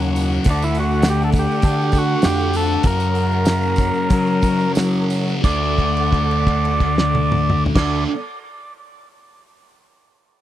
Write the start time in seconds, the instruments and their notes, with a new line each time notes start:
Already playing: picked electric bass D#2, distorted electric guitar F#2 C#3 F#3, string section A#4 C#5 F#5
0.02 tambourine
0.16 open hi-hat, tambourine
0.32 tambourine
0.44 picked electric bass D2, distorted electric guitar D3 A3, kick, open hi-hat, tambourine
0.49 distorted electric guitar D4, transistor combo organ D4, string section A4 D5
0.62 transistor combo organ E4, tambourine
0.75 open hi-hat, tambourine
0.80 transistor combo organ F#4
0.91 tambourine
1.02 snare, open hi-hat, tambourine
1.10 transistor combo organ G4
1.22 transistor combo organ A4, tambourine
1.32 kick, open hi-hat, tambourine
1.39 transistor combo organ G4
1.51 tambourine
1.62 picked electric bass D3, distorted electric guitar D3, kick, open hi-hat, tambourine
1.66 distorted electric guitar A3 D4
1.82 tambourine
1.92 kick, open hi-hat, tambourine
1.98 transistor combo organ F#4
2.22 picked electric bass F2, transistor combo organ G4, snare, open hi-hat, tambourine
2.41 tambourine
2.54 transistor combo organ A4, open hi-hat, tambourine
2.71 tambourine
2.83 picked electric bass F#2, distorted electric guitar F#2 C#3, string section A#4 C#5, transistor combo organ A#4, kick, open hi-hat, tambourine
2.87 distorted electric guitar F#3
3.00 tambourine
3.15 open hi-hat, tambourine
3.32 tambourine
3.45 snare, open hi-hat, tambourine
3.62 tambourine
3.76 kick, open hi-hat, tambourine
3.94 tambourine
4.10 distorted electric guitar F#2 C#3 F#3, picked electric bass F#3, kick, open hi-hat, tambourine
4.26 tambourine
4.42 kick, open hi-hat, tambourine
4.59 tambourine
4.75 picked electric bass F#3, snare, open hi-hat, tambourine
4.93 tambourine
5.10 open hi-hat, tambourine
5.28 tambourine
5.43 picked electric bass D2, distorted electric guitar D3 A3 D4, string section A4 D5 F#5, transistor combo organ D5, kick, crash, tambourine
5.78 kick, crash
5.97 crash
6.12 kick, crash
6.31 crash
6.47 kick, crash
6.65 crash
6.80 kick, crash
6.98 snare
7.15 high tom
7.32 mid tom
7.50 mid tom
7.66 floor tom
7.75 picked electric bass D2, distorted electric guitar D3 A3, string section A4 D5 F#5, transistor combo organ D5, kick, snare, crash
7.79 distorted electric guitar D4